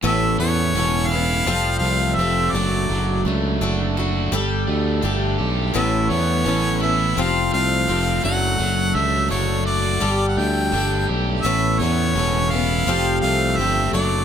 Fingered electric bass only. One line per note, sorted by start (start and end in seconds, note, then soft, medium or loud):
0.04 0.36 A1 medium
0.40 0.72 E2 medium
0.75 1.42 E1 medium
1.46 1.79 F1 medium
1.81 2.14 C2 medium
2.17 2.50 F1 medium
2.53 2.86 F#1 medium
2.90 3.22 F#1 medium
3.25 3.58 C#2 medium
3.61 4.28 F#1 medium
4.32 4.65 G1 medium
4.68 5.01 D2 medium
5.04 5.36 G1 medium
5.39 5.72 B1 medium
5.75 6.08 A1 medium
6.10 6.43 E2 medium
6.46 7.13 A1 medium
7.17 7.50 F1 medium
7.54 7.86 C2 medium
7.89 8.22 F1 medium
8.24 8.57 F#1 medium
8.60 8.93 F#1 medium
8.95 9.28 C#2 medium
9.31 9.98 F#1 medium
10.02 10.35 G1 medium
10.37 10.70 D2 medium
10.73 11.06 G1 medium
11.09 11.42 B1 medium
11.45 11.78 A1 medium
11.80 12.13 E2 medium
12.15 12.83 E1 medium
12.87 13.20 F1 medium
13.23 13.56 C2 medium
13.58 13.91 G1 medium
13.93 14.25 F#1 medium